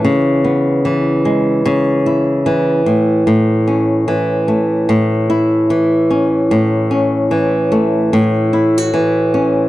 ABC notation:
X:1
M:4/4
L:1/16
Q:"Swing 16ths" 1/4=74
K:C#m
V:1 name="Nylon-string guitar" clef=bass
C,2 B,2 E,2 G,2 C,2 E2 E,2 A,,2 | A,,2 C2 E,2 A,2 A,,2 E2 E,2 C2 | A,,2 C2 E,2 A,2 A,,2 E F E,2 C2 |]